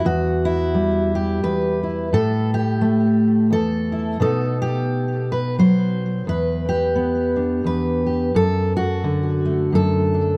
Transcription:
0.05 E2 F#4
0.45 E4
0.74 G3
1.15 G4
1.43 E2 B4
1.83 E4
2.13 A2 A4
2.54 G4
2.81 A3
3.50 E2 A4
3.92 E4
4.20 B2 B3 D#4 A4
4.62 G4
5.32 B4
5.59 F#3 C5
6.27 E2 B4
6.69 G4
6.96 B3
7.36 D4
7.64 E2 B4
8.06 G4
8.34 F#2 A4
8.77 F#4
9.04 D3
9.45 A3
9.72 F#2 A4
10.14 D4

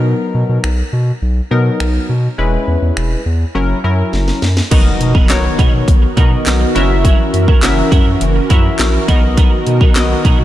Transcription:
Already playing: B2 F#3 B3 D#4 A#4
0.35 B2
0.49 B2
0.64 B1, finger snap
0.93 B2
1.22 B1
1.51 B2 F#3 B3 D#4 A#4
1.80 B1, finger snap
2.09 B2
2.38 E1 G#3 C#4 E4 B4
2.68 E2
2.82 E2
2.97 E1, finger snap
3.26 E2
3.55 F#1 F#3 C#4 E4 A#4
3.84 F#2 F#3 C#4 E4 A#4
4.13 F#1, snare
4.28 snare
4.42 F#2, snare
4.57 snare
4.71 B1 D#3 F#3 B3 D#4 F#4 A#4 D#5, kick, closed hi-hat, crash, impact
4.86 muted clean electric guitar stroke
5.00 B2, muted clean electric guitar stroke, closed hi-hat
5.15 F#3 B3 D#4 A#4, kick
5.29 B1 B3 D#4 F#4 A#4 C#5, snare, clap, closed hi-hat
5.44 muted clean electric guitar stroke
5.59 B2 F#3 B3 D#4 A#4, kick, closed hi-hat
5.73 B2, muted clean electric guitar stroke
5.88 B1, muted clean electric guitar stroke, kick, closed hi-hat
6.02 muted clean electric guitar stroke
6.17 B2 F#3 B3 D#4 F#4 A#4 D#5, kick, closed hi-hat
6.32 muted clean electric guitar stroke
6.46 B1, muted clean electric guitar stroke, snare, clap, closed hi-hat
6.61 muted clean electric guitar stroke
6.75 F#1 E3 F#3 C#4 E4 F#4 A#4 E5, closed hi-hat
6.90 muted clean electric guitar stroke
7.04 F#3 C#4 E4 A#4, kick, closed hi-hat
7.19 muted clean electric guitar stroke
7.33 F#2, muted clean electric guitar stroke, closed hi-hat
7.48 F#3 C#4 E4 A#4, kick
7.63 F#1 C#4 E4 F#4 A#4 E5, snare, clap, closed hi-hat
7.77 muted clean electric guitar stroke
7.92 F#2 F#3 C#4 E4 A#4, kick, closed hi-hat
8.06 F#2, muted clean electric guitar stroke
8.21 F#1, muted clean electric guitar stroke, closed hi-hat
8.35 muted clean electric guitar stroke
8.50 F#2 F#3 C#4 E4 F#4 A#4 E5, kick, closed hi-hat
8.65 muted clean electric guitar stroke
8.79 A#1, snare, clap, closed hi-hat
8.94 muted clean electric guitar stroke
9.08 B1 D#3 F#3 B3 D#4 F#4 A#4 D#5, kick, closed hi-hat
9.23 muted clean electric guitar stroke
9.37 F#3 B3 D#4 A#4, kick, closed hi-hat
9.52 muted clean electric guitar stroke
9.67 B2, muted clean electric guitar stroke, closed hi-hat
9.81 F#3 B3 D#4 A#4, kick
9.95 B1 B3 D#4 F#4 A#4 D#5, snare, clap, closed hi-hat
10.10 muted clean electric guitar stroke
10.24 B2 F#3 B3 D#4 A#4, kick, closed hi-hat
10.39 B2, muted clean electric guitar stroke

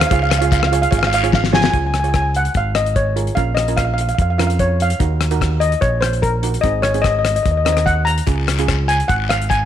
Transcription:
0.01 cross-stick, closed hi-hat
0.07 G#4 F5, long guiro
0.11 C#2 F4 C#5 F5, kick, closed hi-hat
0.23 F5
0.29 F5, cross-stick, closed hi-hat, short guiro
0.39 F4 G#4 C#5 F5, closed hi-hat
0.44 F5
0.51 F5, kick, closed hi-hat, short guiro
0.60 F5, cross-stick
0.67 F5
0.72 F4 G#4 C#5 F5, closed hi-hat
0.82 F5, closed hi-hat
0.91 G#1 F4 G#4 C#5 F5, kick, closed hi-hat, long guiro
0.98 F5
1.03 cross-stick
1.07 F5
1.13 F5, closed hi-hat
1.23 F4 G#4 C#5, closed hi-hat
1.32 F5, kick, snare, short guiro
1.44 snare
1.52 F4 G#4 C#5 G#5, snare
1.62 G#5, snare
1.70 C#2 F4 G#4 C#5 G#5, kick, closed hi-hat
1.78 G#5
1.87 G#5
1.94 G#5, cross-stick, closed hi-hat
2.00 F4 G#5
2.04 G#4 C#5, closed hi-hat
2.08 G#5
2.14 G#5, kick, cross-stick, closed hi-hat
2.22 G#5
2.34 F#5, closed hi-hat
2.45 closed hi-hat
2.54 G#1 F5, kick, closed hi-hat
2.75 D#5, cross-stick, closed hi-hat
2.86 closed hi-hat
2.96 C#5, kick, closed hi-hat
3.16 F4 G#4 A#4, closed hi-hat
3.27 closed hi-hat
3.35 A#1 C#4 F4 A#4 F5, kick, closed hi-hat
3.55 D#5, cross-stick, closed hi-hat
3.68 C#4 F4 A#4, closed hi-hat
3.77 F5, kick, cross-stick, closed hi-hat
3.85 F5
3.94 F5
3.98 F5, closed hi-hat
4.09 F5, closed hi-hat
4.15 F2 F5, kick, closed hi-hat
4.22 F5
4.30 F5
4.38 C#4 F4 A#4 F5, cross-stick, closed hi-hat
4.47 F5, closed hi-hat
4.59 C#5, kick, closed hi-hat
4.80 F5, closed hi-hat
4.90 closed hi-hat
5.00 D#2 D#4 F#4 A#4, kick, closed hi-hat
5.21 cross-stick, closed hi-hat
5.31 D#4 F#4 A#4, closed hi-hat
5.41 kick, cross-stick, closed hi-hat
5.60 D#5, closed hi-hat
5.72 closed hi-hat
5.81 A#1 C#5, kick, closed hi-hat
6.01 C5, cross-stick, closed hi-hat
6.13 closed hi-hat
6.22 A#4, kick, closed hi-hat
6.43 D#4 F#4 A#4, closed hi-hat
6.54 closed hi-hat
6.61 G#1 C4 D#4 G#4 D#5, kick, closed hi-hat
6.82 C#5, cross-stick, closed hi-hat
6.94 C4 D#4 G#4, closed hi-hat
7.02 D#5, kick, cross-stick, closed hi-hat
7.10 D#5
7.19 D#5
7.25 D#5, cross-stick, closed hi-hat
7.36 D#5, closed hi-hat
7.43 D#2 D#5, kick, closed hi-hat
7.51 D#5
7.57 D#5
7.65 C4 D#4 A#4 D#5, cross-stick, closed hi-hat
7.72 D#5
7.77 cross-stick, closed hi-hat
7.86 F#5, kick, closed hi-hat
8.05 A#5, closed hi-hat
8.18 closed hi-hat
8.27 C#2 C#4 F4 G#4, kick, closed hi-hat, long guiro
8.48 cross-stick, closed hi-hat
8.58 C#4 F4 G#4, closed hi-hat
8.68 kick, cross-stick, closed hi-hat, short guiro
8.88 G#5, closed hi-hat, short guiro
9.00 closed hi-hat
9.08 G#1 F#5, kick, closed hi-hat, long guiro
9.29 F5, cross-stick, closed hi-hat, short guiro
9.41 closed hi-hat
9.49 G#5, kick, closed hi-hat, short guiro

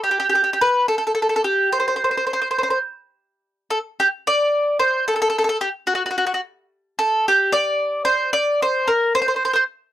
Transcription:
0.04 G4
0.11 G4
0.20 G4
0.29 G4
0.35 G4
0.44 G4
0.53 G4
0.61 B4
0.88 A4
0.98 A4
1.07 A4
1.15 A4
1.22 A4
1.29 A4
1.36 A4
1.44 G4
1.73 C5
1.80 C5
1.88 C5
1.96 C5
2.04 C5
2.11 C5
2.17 C5
2.27 C5
2.33 C5
2.42 C5
2.51 C5
2.58 C5
2.63 C5
2.70 C5
3.70 A4
4.00 G4
4.27 D5
4.79 C5
5.08 A4
5.16 A4
5.22 A4
5.30 A4
5.38 A4
5.44 A4
5.49 A4
5.61 G4
5.87 F#4
5.95 F#4
6.06 F#4
6.11 F#4
6.18 F#4
6.27 F#4
6.34 F#4
6.99 A4
7.28 G4
7.52 D5
8.05 C5
8.33 D5
8.62 C5
8.88 A#4
9.15 C5
9.22 C5
9.28 C5
9.36 C5
9.45 C5
9.53 C5

